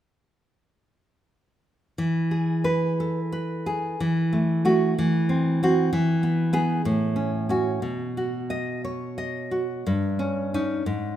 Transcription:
1.98 3.95 E3 medium
2.31 3.32 G#4 soft
2.64 3.19 B4 medium
3.00 4.00 A4 soft
3.32 3.99 B4 medium
3.66 3.99 G#4 soft
4.00 4.93 E3 medium
4.33 4.64 A3 soft
4.65 4.93 A3 soft
4.65 4.93 F#4 medium
4.99 5.89 E3 medium
5.29 5.62 C4 soft
5.63 5.89 C4 soft
5.63 5.90 F#4 medium
5.93 6.81 E3 medium
6.23 6.52 B3 soft
6.53 6.81 B3 medium
6.53 6.81 G#4 medium
6.85 7.79 A2 medium
7.16 7.48 C#4 soft
7.49 7.79 C#4 soft
7.49 7.79 F#4 medium
7.82 9.83 B2 medium
8.17 9.17 F#4 soft
8.50 8.84 D#5 medium
8.85 9.87 C#5 soft
9.18 9.86 D#5 soft
9.51 9.86 F#4 soft
9.87 10.82 G2 medium
10.19 10.53 C#4 soft
10.54 10.82 C#4 soft
10.54 10.82 D#4 medium
10.86 11.16 G#2 medium

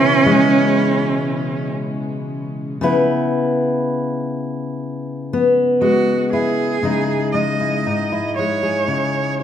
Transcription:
0.00 2.76 B2 medium
0.00 2.80 C#3 medium
0.00 2.76 E3 medium
0.00 0.24 G#3 medium
0.00 2.75 G#3 medium
0.00 1.73 C#4 medium
0.00 2.76 C#4 medium
0.00 2.73 E4 medium
0.00 2.73 B4 medium
0.26 2.73 G#3 medium
2.81 6.81 C#3 medium
2.81 5.32 B3 medium
2.81 6.32 E4 soft
2.81 6.78 B4 medium
5.33 6.84 B3 soft
5.81 6.76 G#3 medium
5.81 6.28 F#4 medium
6.33 6.77 E4 soft
6.33 7.30 G#4 medium
6.83 7.85 C#3 soft
6.83 7.33 G#3 soft
6.83 7.86 D#4 soft
6.83 7.59 E4 soft
7.32 8.38 G#3 soft
7.32 8.31 D#5 medium
7.60 8.11 E4 soft
7.86 8.88 G#2 soft
7.86 9.43 D#4 soft
8.12 9.43 E4 soft
8.35 9.40 G#3 soft
8.35 9.34 C#5 medium
8.63 9.43 G#4 soft
8.88 9.43 C#3 soft

